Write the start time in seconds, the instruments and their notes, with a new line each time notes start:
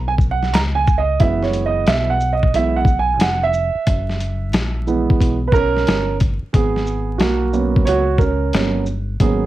Already playing: fingered electric bass B1
0.08 grand piano G#5
0.18 kick, shaker
0.31 grand piano F#5
0.43 snare
0.53 fingered electric bass C#2, grand piano A#5, snare, closed hi-hat
0.75 grand piano G#5
0.87 kick, shaker
0.98 grand piano D#5
1.19 fingered electric bass F#1, grand piano E3 G#3 B3 E5, kick, closed hi-hat
1.43 grand piano C#5, snare
1.53 closed hi-hat, shaker
1.66 grand piano D#5
1.87 fingered electric bass B1, grand piano E5, snare, closed hi-hat
2.10 grand piano F#5
2.21 shaker
2.33 grand piano D#5
2.43 kick
2.54 fingered electric bass B1, grand piano E3 G#3 B3 E5, closed hi-hat
2.76 grand piano F#5
2.85 kick, shaker
2.99 grand piano G#5
3.20 fingered electric bass F1, grand piano F#5, snare, closed hi-hat
3.43 grand piano E5
3.54 shaker
3.75 muted fingered electric bass stroke
3.87 fingered electric bass F#1, kick, closed hi-hat
4.10 snare
4.20 closed hi-hat, shaker
4.53 fingered electric bass A#1, snare, closed hi-hat
4.87 grand piano E3 G#3 B3, shaker
5.10 kick
5.20 fingered electric bass B1, kick, closed hi-hat
5.47 grand piano B4
5.52 grand piano C#4 A#4, kick, shaker
5.77 snare
5.87 fingered electric bass G1, snare, closed hi-hat
6.20 kick, closed hi-hat, shaker
6.43 muted fingered electric bass stroke
6.53 fingered electric bass G#1, grand piano B3 G#4, kick, closed hi-hat
6.76 snare
6.87 shaker
7.18 fingered electric bass B1, grand piano A#3 F#4, snare, closed hi-hat
7.53 grand piano F#3 A#3 B3 C#4, shaker
7.76 kick
7.85 fingered electric bass C#2, grand piano F#4 C#5, closed hi-hat
8.18 grand piano C#4 A#4, kick, shaker
8.53 fingered electric bass G1, grand piano F#3 A#3 B3 C#4, snare, closed hi-hat
8.86 shaker
9.20 fingered electric bass G#1, grand piano F#3 A#3 B3 C#4 G#4, kick, closed hi-hat